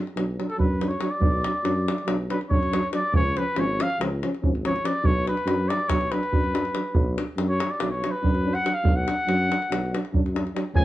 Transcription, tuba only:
0.16 0.40 B1 medium
0.59 0.93 F#2 medium
1.21 1.45 B1 medium
1.64 1.88 F#2 loud
2.07 2.31 B1 medium
2.51 2.85 F#2 medium
3.13 3.37 C#2 medium
3.56 3.80 G#1 medium
3.99 4.23 C#2 medium
4.43 4.77 G#1 medium
5.03 5.27 B1 loud
5.46 5.70 F#2 loud
5.89 6.13 B1 medium
6.32 6.66 F#2 medium
6.94 7.18 B1 loud
7.37 7.60 F#2 loud
7.80 8.04 B1 medium
8.23 8.57 F#2 medium
8.84 9.08 B1 medium
9.28 9.52 F#2 loud
9.70 9.94 B1 medium
10.13 10.47 F#2 medium
10.74 10.85 C#2 loud

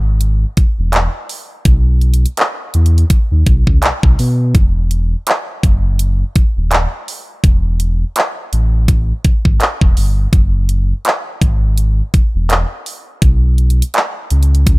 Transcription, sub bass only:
0.00 0.45 G#1 medium
0.58 0.66 E1 soft
0.79 1.09 E1 loud
1.66 2.26 B1 loud
2.74 3.04 E2 medium
3.31 3.44 D#2 medium
3.47 3.64 B1 medium
3.67 3.80 C#2 medium
3.83 3.91 B1 soft
4.04 4.16 B1 medium
4.19 4.56 B2 loud
4.55 5.15 E1 loud
5.64 6.24 F#1 medium
6.36 6.44 D#1 soft
6.57 6.87 D#1 medium
7.44 8.04 E1 loud
8.53 9.13 A1 medium
9.25 9.33 G#1 soft
9.45 9.58 G#1 loud
9.82 9.94 E1 medium
9.97 10.27 G1 loud
10.33 10.93 F#1 loud
11.42 12.02 G#1 medium
12.14 12.22 E1 soft
12.35 12.65 E1 medium
13.22 13.82 B1 loud
14.31 14.79 C#2 medium

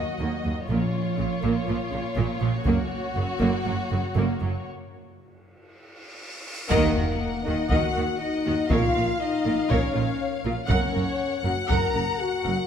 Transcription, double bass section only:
0.20 0.28 D#2 soft
0.45 0.53 D#2 soft
0.69 0.77 A#1 medium
1.19 1.27 A#1 soft
1.43 1.51 A#1 medium
1.68 1.76 A#1 soft
1.92 2.00 A#1 soft
2.16 2.24 A#1 medium
2.41 2.49 A#1 medium
2.65 2.73 F#1 medium
3.15 3.23 F#1 soft
3.41 3.49 F#1 medium
3.66 3.74 F#1 soft
3.91 3.99 F#1 soft
4.15 4.23 F#1 medium
4.41 4.49 F#1 soft
6.71 6.94 D#2 medium
6.96 7.04 D#2 soft
7.46 7.54 D#2 soft
7.71 7.79 D#2 medium
7.97 8.05 D#2 soft
8.47 8.55 D#2 medium
8.71 8.79 A#1 medium
8.96 9.04 A#1 soft
9.46 9.54 A#1 soft
9.71 9.79 A#1 medium
9.96 10.04 A#1 soft
10.45 10.53 A#1 medium
10.70 10.78 F#1 medium
10.95 11.03 F#1 medium
11.45 11.53 F#1 soft
11.70 11.78 F#1 medium
11.95 12.03 F#1 soft
12.45 12.53 F#1 medium

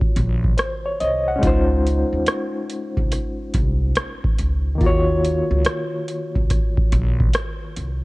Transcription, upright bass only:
0.16 0.52 A#1 loud
1.01 1.37 C2 medium
1.43 2.02 C#2 loud
2.13 2.25 D#2 medium
2.97 3.10 C2 medium
3.55 3.90 C2 loud
4.39 4.81 C#2 medium
4.81 5.40 D#2 medium
5.51 5.63 C#2 medium
6.36 6.48 C2 medium
6.93 7.28 A#1 loud
7.77 8.04 C2 medium

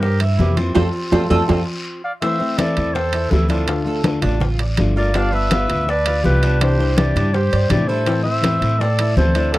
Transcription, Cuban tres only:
0.03 0.20 C5 medium
0.21 0.56 E4 medium
0.57 0.74 C4 medium
0.75 0.87 C4 medium
0.75 0.87 F4 medium
0.75 0.87 A4 medium
1.12 1.24 C4 loud
1.12 1.24 F4 medium
1.12 1.24 A4 medium
1.30 1.42 C4 medium
1.30 1.42 F4 loud
1.30 1.42 A4 loud
1.49 1.61 C4 medium
1.49 1.61 F4 medium
1.49 1.61 A4 medium
2.23 2.58 C4 medium
2.59 2.94 E4 medium
2.95 3.13 C4 medium
3.14 3.49 E4 medium
3.50 3.86 D4 medium
3.87 4.22 A4 medium
4.23 4.41 D4 medium
4.42 4.60 F4 medium
4.60 4.96 D5 medium
4.97 5.15 F4 medium
5.16 5.51 D4 medium
5.52 5.87 F4 medium
5.89 6.06 D4 medium
6.07 6.42 F4 medium
6.43 6.79 D4 medium
6.80 7.15 C5 medium
7.17 7.34 D4 medium
7.34 7.52 G4 medium
7.53 7.88 D5 medium
7.89 8.07 E4 medium
8.08 8.44 C4 medium
8.45 8.80 E4 medium
8.81 8.99 C4 medium
9.00 9.35 E4 medium
9.36 9.58 D4 medium

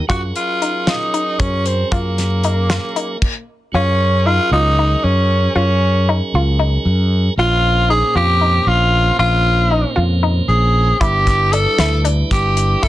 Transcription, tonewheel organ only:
0.07 3.17 F#3 medium
0.07 3.17 C#4 medium
0.07 3.18 G#4 medium
0.07 3.19 A#4 medium
3.72 7.33 F#3 medium
3.72 7.33 C#4 medium
3.72 7.34 G#4 medium
3.72 7.35 A#4 medium
7.36 10.97 A#2 medium
7.36 10.97 A#3 medium
7.36 10.98 C#4 medium
7.36 10.99 C5 medium
10.99 12.88 G3 medium
10.99 12.88 D4 medium
10.99 12.88 E4 medium
10.99 12.88 B4 medium

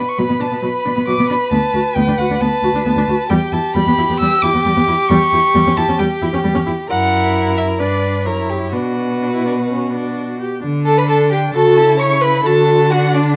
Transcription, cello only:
0.19 0.23 B2 medium
0.30 0.34 B2 medium
0.41 0.45 B2 soft
0.52 0.57 B2 soft
0.63 0.68 B2 medium
0.86 0.90 B2 medium
0.97 1.01 B2 soft
1.08 1.12 B2 medium
1.19 1.23 B2 medium
1.30 1.34 B2 medium
1.52 1.56 D2 medium
1.74 1.78 D2 medium
1.97 2.01 D2 medium
2.08 2.12 D2 medium
2.18 2.23 D2 medium
2.30 2.34 D2 medium
2.40 2.45 D2 medium
2.63 2.67 D2 medium
2.73 2.78 D2 medium
2.85 2.90 D2 medium
2.96 3.01 D2 medium
3.08 3.13 D2 medium
3.31 3.35 E2 medium
3.53 3.57 E2 medium
3.75 3.80 E2 medium
3.86 3.91 E2 medium
3.98 4.02 E2 medium
4.09 4.13 E2 medium
4.20 4.25 E2 medium
4.43 4.47 E2 medium
4.54 4.58 E2 medium
4.65 4.69 E2 medium
4.77 4.81 E2 medium
4.88 4.92 E2 medium
5.10 5.15 E2 loud
5.32 5.37 E2 medium
5.55 5.59 E2 loud
5.66 5.71 E2 medium
5.77 5.82 E2 medium
5.88 5.93 E2 medium
5.99 6.04 E2 medium
6.22 6.27 E2 medium
6.33 6.37 E2 medium
6.44 6.49 E2 medium
6.56 6.60 E2 medium
6.67 6.72 E2 medium
6.89 7.81 F#2 medium
7.79 8.27 G2 medium
8.25 8.74 F#2 medium
8.73 10.43 B2 medium
10.63 11.50 D3 medium
11.54 12.44 C#3 medium
12.45 13.36 D3 medium

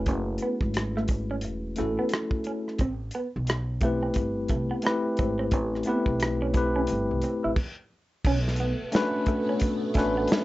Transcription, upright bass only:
0.08 0.36 F#1 loud
0.62 1.45 G#1 medium
1.45 1.73 E1 medium
1.79 1.96 A1 medium
2.80 3.09 A1 medium
3.36 4.17 B1 medium
4.17 4.46 G1 medium
4.51 4.68 C2 medium
5.20 5.53 G#1 medium
5.53 5.82 A1 medium
6.07 6.85 B1 medium
6.91 7.07 G1 medium
7.11 7.22 C2 medium
7.45 7.56 A1 medium
8.26 8.72 B1 loud
8.81 muted upright bass stroke soft
9.96 10.25 A1 medium

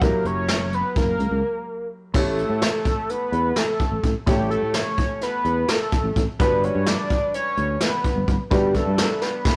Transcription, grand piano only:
0.01 2.10 F#3 medium
0.01 2.11 E4 medium
0.01 2.11 G4 medium
0.01 2.11 A#4 medium
2.14 4.23 A3 medium
2.14 4.23 E4 medium
2.14 4.23 G4 medium
2.14 4.24 C#5 medium
4.26 6.35 A3 medium
4.26 6.35 E4 medium
4.26 6.36 G4 medium
4.26 6.36 C#5 medium
6.39 8.47 G3 medium
6.39 8.47 D4 medium
6.39 8.48 F#4 medium
6.39 8.48 B4 medium
8.50 9.56 G3 medium
8.50 9.56 D4 medium
8.50 9.56 F#4 medium
8.50 9.56 B4 medium

